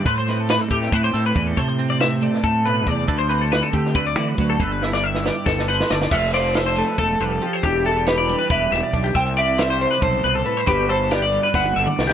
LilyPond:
<<
  \new Staff \with { instrumentName = "Clean electric guitar" } { \time 7/8 \key g \major \tempo 4 = 138 r2. r8 | r2. r8 | r2. r8 | r2. r8 |
e''8 c''4 a'8 a'4 g'8 | g'8 a'8 b'4 e''4 r8 | g''8 e''4 c''8 c''4 b'8 | b'8 c''8 d''4 fis''4 r8 | }
  \new Staff \with { instrumentName = "Clean electric guitar" } { \time 7/8 \key g \major b'16 c''16 b'16 a'16 b'16 a'16 g'8 b'16 c''8 b'8 a'16 | c''8 r16 d''16 e''8 d''8 a'8 b'8 d''8 | b'16 c''16 b'16 a'16 b'16 a'16 g'8 b'16 d''8 b'8 a'16 | b'8 r16 d''16 e''8 d''8 a'8 b'8 d''8 |
f''8 d''8 e''16 c''8 b'16 a'8 b'16 a'8 c''16 | g'8 a'8 g'16 d''8 b'16 b'8 e''16 d''8 g'16 | e''8 d''8 e''16 c''8 b'16 a'8 b'16 a'8 c''16 | g'8 a'8 g'16 d''8 b'16 b'8 e''16 d''8 g'16 | }
  \new Staff \with { instrumentName = "Clean electric guitar" } { \time 7/8 \key g \major << { c''8 c'4. e'16 g'16 a'16 c''8. | a'16 c''16 c'2. | a'16 c''16 c'2. | a'16 b'16 e'4. a'8 c''4 |
a'8 f'8 a'2~ a'8 | d'8 e'16 g'16 g'4 g'4 d'8 | c''8 g'8 c''2~ c''8 | fis'8 fis'8 b'4 e'16 fis'8. d'8 | } \\ { <a, g>4. a4. e8 | a,4. a8 a,8 b,8 c8 | d4. a8 d8 e8 fis8 | g,4. g4. d8 |
f4. a8 a8 g8 f8 | e4. g4 b,4 | c4. g8 c8 b,8 a,8 | g,4. g4 d4 | } >> }
  \new Staff \with { instrumentName = "Fingered electric bass" } { \clef bass \time 7/8 \key g \major a,4. a,8 a,8 a,8 e,8 | c2 a,4 e,8 | d,4. d8 d,8 d8 d,8 | g,,2 g,,4 g,,8 |
f,,2 e,,8 f,,8 r8 | e,,2 e,,8 e,,16 r16 b,,8 | c,2 b,,8 c,8 r8 | g,,2 g,,8 g,,16 r16 c,8 | }
  \new DrumStaff \with { instrumentName = "Drums" } \drummode { \time 7/8 <hh bd>8 <hh sn>8 <hh sn>8 <hh bd>8 <hh bd>8 hh8 <hh bd>8 | <hh bd>8 hh8 <hh sn>8 hh8 <hh bd>8 hh8 <hh bd>8 | <hh bd>8 hh8 <hh sn>8 <hh bd>8 <hh bd>8 hh8 <hh bd>8 | <hh bd>8 sn16 sn16 r16 sn16 sn8 <bd sn>16 sn8 sn16 sn16 sn16 |
<cymc bd>8 <hh sn>8 <hh sn>8 hh8 <hh bd>8 hh8 hh8 | <hh bd>8 hh8 <hh sn>8 hh8 <hh bd>8 <hh sn>8 <hh bd>8 | <hh bd>8 hh8 <hh sn>8 hh8 <hh bd>8 hh8 hh8 | <hh bd>8 hh8 <hh sn>8 hh8 <bd tommh>16 tommh8 toml16 sn16 sn16 | }
>>